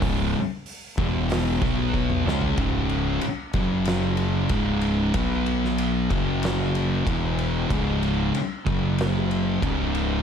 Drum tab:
RD |----------------|x-x-x-x-x-x-x-x-|x-x-x-x-x-x-x-x-|x-x-x-x-x-x-x-x-|
HH |o---o---o-------|----------------|----------------|----------------|
SD |--------o-o---o-|--------o-------|---o----o-------|--------o-------|
T2 |-------------o--|----------------|----------------|----------------|
FT |---------------o|----------------|----------------|----------------|
BD |o-----o---o-o---|o-----o-----o---|o-----o-----o---|o-----o-----o---|